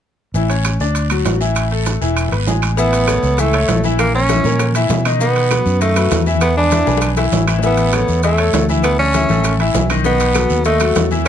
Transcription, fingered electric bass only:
0.34 A1
0.80 D2
1.25 A1
2.01 E1
2.32 G#1
2.47 A1
3.23 C#2
3.68 A#1
4.44 A#2
4.89 B2
5.65 F#2
6.11 E2
6.87 B1
7.32 A1
8.08 E2
8.53 D2
9.30 A1
9.74 B1
10.50 D#2
10.96 E2

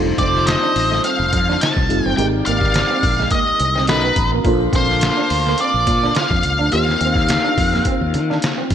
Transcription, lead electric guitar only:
0.19 D5
0.47 D#5
1.05 F5
1.61 A5
2.06 G5
2.17 G5
2.46 F5
3.32 D#5
3.89 B4
4.76 C5
5.61 D5
6.17 F5
6.73 F5

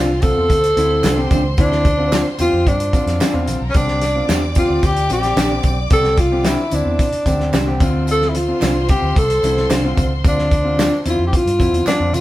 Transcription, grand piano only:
0.22 D3 C4 F4
0.76 D3 C4 E4
1.16 D3 C4 G4
1.57 D3 C4 E4
1.98 D3 C4 F4
2.39 D3 C4 G4
2.93 D3 C4 F4
3.33 D3 C4 F4
3.75 D3 C4 G4
4.15 D3 C4 F4
4.56 D3 C4 G4
5.10 D3 C4 G4
5.50 D3 C4 G4
5.91 D3 C4 G4
6.31 D3 C4 G4
6.72 D3 C4 E4
7.26 D3 C4 G4
7.66 D3 C4 G4
7.81 D3 C4 F4
8.48 D3 C4 F4
8.89 D3 C4 F4
9.43 D3 C4 E4
9.84 D3 C4 F4
10.24 D3 C4 F4
10.64 D3 C4 F4
11.05 D3 C4 E4
11.58 D3 C4 E4
11.99 D3 C4 F4

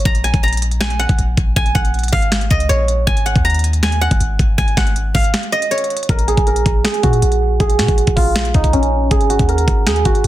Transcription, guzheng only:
Already playing: C#5 D#5 F5
0.05 A#5
0.24 G#5
0.43 A#5
0.80 G#5
0.99 F#5
1.56 G#5
1.75 F#5
2.12 F5
2.51 D#5
2.69 C#5
3.07 G#5
3.26 F#5
3.45 A#5
3.83 G#5
4.01 F#5
4.58 G#5
4.77 F#5
5.14 F5
5.52 D#5
5.71 C#5
6.09 A#4
6.28 G#4
6.47 A#4
6.84 G#4
7.03 F#4
7.60 G#4
7.78 F#4
8.16 F4
8.54 D#4
8.73 C#4
9.11 G#4
9.30 F#4
9.49 A#4
9.87 G#4
10.05 F#4

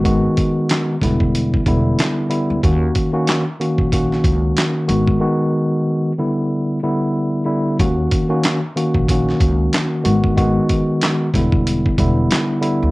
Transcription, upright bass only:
Already playing: G#1
1.02 E1
1.66 E1
2.50 D2
2.63 D#2
3.78 A#1
4.24 C#2
4.89 G#1
7.79 D#2
8.95 A#1
9.40 C#2
10.05 G#1
11.34 E1
11.98 E1
12.83 D2

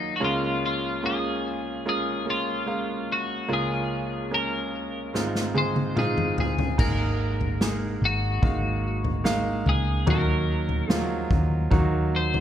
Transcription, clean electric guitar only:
Already playing: D#4
0.16 F#4
0.25 F4
0.66 F4
1.06 G#4
1.89 G#4
2.30 F4
3.12 F#4
3.53 G#4
4.34 A#4
5.58 C5
5.99 G#4
6.40 G#4
6.80 A#4
8.05 F#4
9.69 G#4
10.10 A#4
10.91 G#4
12.16 C5

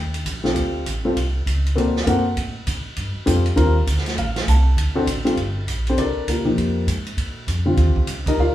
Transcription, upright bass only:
Already playing: D#2
0.26 A#1
0.55 D2
0.86 A1
1.16 C2
1.46 C#2
1.76 D2
2.06 F#2
2.36 A2
2.67 A#2
2.97 G2
3.15 muted upright bass stroke
3.27 F2
3.57 D#2
3.87 D2
4.17 A1
4.47 C2
4.77 D2
5.07 A1
5.37 G1
5.67 A#1
5.98 C2
6.16 muted upright bass stroke
6.27 D2
6.57 F2
6.87 G#2
7.17 A#2
7.47 F2
7.77 D#2
8.07 C2
8.38 D2

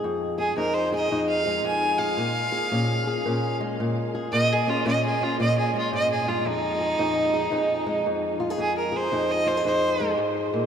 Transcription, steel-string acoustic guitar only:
Already playing: G#3 G#4
0.04 F2
0.38 G#4
0.57 F2 D#4
0.92 G#4
1.11 F2 D#4
1.46 G#3
1.64 F2
1.99 G#4
2.17 A#2
2.52 G#4
2.72 A#2 C#4
3.07 G#4
3.26 A#2 C#4
3.60 G#3
3.80 A#2
4.15 G#4
4.33 A#2
4.67 C#4
4.85 A#2 C#4
5.21 C#4
5.40 A#2 C#4
5.74 G#3
5.92 G#2
6.26 G2
6.45 F2
6.80 G#4
6.99 F2 D#4
7.33 G#4
7.51 F2 D#4
7.86 G#3
8.06 F2
8.40 F4
8.50 G#4
8.58 F2
8.92 G#4
9.12 F2 D#4
9.46 F4
9.57 G#4
9.65 F2 D#4
10.00 G#3
10.18 G#2
10.54 A#2

